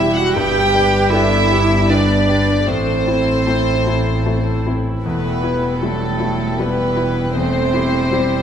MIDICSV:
0, 0, Header, 1, 7, 480
1, 0, Start_track
1, 0, Key_signature, 1, "minor"
1, 0, Tempo, 769231
1, 221, Time_signature, 3, 2, 24, 8
1, 1182, Tempo, 785340
1, 3582, Tempo, 763359
1, 5218, End_track
2, 0, Start_track
2, 0, Title_t, "Violin section"
2, 0, Program_c, 0, 48
2, 0, Note_on_c, 0, 76, 69
2, 99, Note_on_c, 0, 78, 65
2, 101, Note_off_c, 0, 76, 0
2, 220, Note_off_c, 0, 78, 0
2, 225, Note_on_c, 0, 79, 83
2, 692, Note_off_c, 0, 79, 0
2, 704, Note_on_c, 0, 76, 82
2, 1176, Note_off_c, 0, 76, 0
2, 1187, Note_on_c, 0, 74, 67
2, 1661, Note_on_c, 0, 72, 68
2, 1662, Note_off_c, 0, 74, 0
2, 2865, Note_off_c, 0, 72, 0
2, 3099, Note_on_c, 0, 71, 51
2, 3553, Note_off_c, 0, 71, 0
2, 3581, Note_on_c, 0, 69, 49
2, 4063, Note_off_c, 0, 69, 0
2, 4068, Note_on_c, 0, 71, 51
2, 4543, Note_off_c, 0, 71, 0
2, 4551, Note_on_c, 0, 72, 64
2, 5218, Note_off_c, 0, 72, 0
2, 5218, End_track
3, 0, Start_track
3, 0, Title_t, "Viola"
3, 0, Program_c, 1, 41
3, 0, Note_on_c, 1, 67, 64
3, 223, Note_on_c, 1, 71, 64
3, 233, Note_off_c, 1, 67, 0
3, 455, Note_off_c, 1, 71, 0
3, 459, Note_on_c, 1, 71, 74
3, 698, Note_on_c, 1, 69, 65
3, 707, Note_off_c, 1, 71, 0
3, 946, Note_on_c, 1, 67, 59
3, 955, Note_off_c, 1, 69, 0
3, 1189, Note_on_c, 1, 71, 66
3, 1198, Note_off_c, 1, 67, 0
3, 1660, Note_off_c, 1, 71, 0
3, 1664, Note_on_c, 1, 69, 57
3, 2843, Note_off_c, 1, 69, 0
3, 3103, Note_on_c, 1, 57, 49
3, 3344, Note_on_c, 1, 55, 41
3, 3353, Note_off_c, 1, 57, 0
3, 3580, Note_on_c, 1, 54, 49
3, 3589, Note_off_c, 1, 55, 0
3, 4060, Note_on_c, 1, 52, 48
3, 4069, Note_off_c, 1, 54, 0
3, 4533, Note_off_c, 1, 52, 0
3, 4537, Note_on_c, 1, 57, 55
3, 5018, Note_on_c, 1, 55, 54
3, 5027, Note_off_c, 1, 57, 0
3, 5218, Note_off_c, 1, 55, 0
3, 5218, End_track
4, 0, Start_track
4, 0, Title_t, "Grand piano"
4, 0, Program_c, 2, 0
4, 0, Control_c, 2, 64, 127
4, 0, Note_on_c, 2, 40, 53
4, 0, Note_on_c, 2, 55, 46
4, 0, Note_on_c, 2, 64, 48
4, 0, Note_on_c, 2, 67, 51
4, 201, Note_off_c, 2, 64, 0
4, 201, Note_off_c, 2, 67, 0
4, 225, Note_on_c, 2, 43, 60
4, 231, Control_c, 2, 64, 0
4, 234, Note_off_c, 2, 55, 0
4, 236, Note_off_c, 2, 40, 0
4, 330, Control_c, 2, 64, 127
4, 455, Note_off_c, 2, 43, 0
4, 467, Note_on_c, 2, 62, 48
4, 470, Note_on_c, 2, 67, 50
4, 679, Note_off_c, 2, 62, 0
4, 681, Note_off_c, 2, 67, 0
4, 705, Note_on_c, 2, 59, 47
4, 708, Note_on_c, 2, 62, 52
4, 710, Note_on_c, 2, 67, 51
4, 919, Note_off_c, 2, 59, 0
4, 921, Note_off_c, 2, 62, 0
4, 922, Note_off_c, 2, 67, 0
4, 946, Note_on_c, 2, 62, 42
4, 949, Note_on_c, 2, 67, 50
4, 1161, Note_off_c, 2, 62, 0
4, 1163, Note_off_c, 2, 67, 0
4, 1184, Note_on_c, 2, 59, 42
4, 1187, Note_on_c, 2, 62, 43
4, 1189, Note_on_c, 2, 67, 50
4, 1398, Note_off_c, 2, 59, 0
4, 1399, Note_off_c, 2, 62, 0
4, 1401, Note_off_c, 2, 67, 0
4, 1421, Note_on_c, 2, 62, 40
4, 1423, Note_on_c, 2, 67, 48
4, 1635, Note_off_c, 2, 62, 0
4, 1637, Note_off_c, 2, 67, 0
4, 1657, Note_on_c, 2, 45, 48
4, 1669, Control_c, 2, 64, 0
4, 1773, Control_c, 2, 64, 127
4, 1890, Note_off_c, 2, 45, 0
4, 1902, Note_on_c, 2, 60, 40
4, 1904, Note_on_c, 2, 64, 44
4, 2117, Note_off_c, 2, 60, 0
4, 2118, Note_off_c, 2, 64, 0
4, 2142, Note_on_c, 2, 57, 34
4, 2144, Note_on_c, 2, 60, 36
4, 2148, Note_on_c, 2, 64, 40
4, 2358, Note_off_c, 2, 57, 0
4, 2359, Note_off_c, 2, 60, 0
4, 2362, Note_off_c, 2, 64, 0
4, 2385, Note_on_c, 2, 60, 36
4, 2390, Note_on_c, 2, 64, 40
4, 2601, Note_off_c, 2, 60, 0
4, 2603, Note_off_c, 2, 64, 0
4, 2628, Note_on_c, 2, 57, 36
4, 2630, Note_on_c, 2, 60, 31
4, 2631, Note_on_c, 2, 64, 36
4, 2843, Note_off_c, 2, 57, 0
4, 2844, Note_off_c, 2, 60, 0
4, 2845, Note_off_c, 2, 64, 0
4, 2873, Note_on_c, 2, 60, 30
4, 2876, Note_on_c, 2, 64, 38
4, 3086, Note_off_c, 2, 60, 0
4, 3088, Note_off_c, 2, 64, 0
4, 3114, Note_on_c, 2, 40, 44
4, 3118, Control_c, 2, 64, 0
4, 3236, Control_c, 2, 64, 127
4, 3342, Note_off_c, 2, 40, 0
4, 3346, Note_on_c, 2, 64, 39
4, 3558, Note_off_c, 2, 64, 0
4, 3582, Note_on_c, 2, 55, 31
4, 3586, Note_on_c, 2, 64, 40
4, 3799, Note_off_c, 2, 55, 0
4, 3801, Note_off_c, 2, 64, 0
4, 3821, Note_on_c, 2, 64, 40
4, 4038, Note_off_c, 2, 64, 0
4, 4066, Note_on_c, 2, 55, 38
4, 4071, Note_on_c, 2, 64, 37
4, 4280, Note_off_c, 2, 55, 0
4, 4283, Note_off_c, 2, 64, 0
4, 4302, Note_on_c, 2, 64, 40
4, 4517, Note_off_c, 2, 64, 0
4, 4546, Note_on_c, 2, 40, 50
4, 4553, Control_c, 2, 64, 0
4, 4638, Control_c, 2, 64, 127
4, 4775, Note_off_c, 2, 40, 0
4, 4788, Note_on_c, 2, 64, 36
4, 4791, Note_on_c, 2, 67, 42
4, 5000, Note_off_c, 2, 64, 0
4, 5002, Note_off_c, 2, 67, 0
4, 5026, Note_on_c, 2, 55, 42
4, 5030, Note_on_c, 2, 64, 37
4, 5034, Note_on_c, 2, 67, 45
4, 5218, Note_off_c, 2, 55, 0
4, 5218, Note_off_c, 2, 64, 0
4, 5218, Note_off_c, 2, 67, 0
4, 5218, End_track
5, 0, Start_track
5, 0, Title_t, "String section"
5, 0, Program_c, 3, 48
5, 0, Note_on_c, 3, 55, 52
5, 0, Note_on_c, 3, 64, 54
5, 196, Note_off_c, 3, 64, 0
5, 225, Note_on_c, 3, 71, 57
5, 226, Note_on_c, 3, 62, 57
5, 1657, Note_on_c, 3, 69, 47
5, 1659, Note_on_c, 3, 52, 48
5, 1661, Note_off_c, 3, 55, 0
5, 1661, Note_off_c, 3, 71, 0
5, 1661, Note_on_c, 3, 64, 48
5, 1662, Note_off_c, 3, 62, 0
5, 3105, Note_off_c, 3, 69, 0
5, 3110, Note_on_c, 3, 79, 44
5, 4530, Note_off_c, 3, 64, 0
5, 4535, Note_on_c, 3, 55, 49
5, 4537, Note_on_c, 3, 64, 49
5, 4541, Note_off_c, 3, 52, 0
5, 5218, Note_off_c, 3, 55, 0
5, 5218, Note_off_c, 3, 64, 0
5, 5218, Note_off_c, 3, 79, 0
5, 5218, End_track
6, 0, Start_track
6, 0, Title_t, "Cello"
6, 0, Program_c, 4, 42
6, 0, Note_on_c, 4, 64, 77
6, 101, Note_off_c, 4, 64, 0
6, 111, Note_on_c, 4, 66, 82
6, 215, Note_on_c, 4, 67, 100
6, 225, Note_off_c, 4, 66, 0
6, 687, Note_on_c, 4, 64, 106
6, 696, Note_off_c, 4, 67, 0
6, 1188, Note_on_c, 4, 62, 76
6, 1197, Note_off_c, 4, 64, 0
6, 1654, Note_on_c, 4, 60, 77
6, 1663, Note_off_c, 4, 62, 0
6, 2862, Note_off_c, 4, 60, 0
6, 3109, Note_on_c, 4, 59, 61
6, 3583, Note_on_c, 4, 57, 67
6, 3592, Note_off_c, 4, 59, 0
6, 4057, Note_on_c, 4, 59, 65
6, 4067, Note_off_c, 4, 57, 0
6, 4533, Note_off_c, 4, 59, 0
6, 4537, Note_on_c, 4, 60, 79
6, 5218, Note_off_c, 4, 60, 0
6, 5218, End_track
7, 0, Start_track
7, 0, Title_t, "Double bass"
7, 0, Program_c, 5, 43
7, 0, Note_on_c, 5, 28, 58
7, 221, Note_on_c, 5, 31, 70
7, 230, Note_off_c, 5, 28, 0
7, 1658, Note_on_c, 5, 33, 61
7, 1668, Note_off_c, 5, 31, 0
7, 3107, Note_on_c, 5, 28, 52
7, 3116, Note_off_c, 5, 33, 0
7, 5218, Note_off_c, 5, 28, 0
7, 5218, End_track
0, 0, End_of_file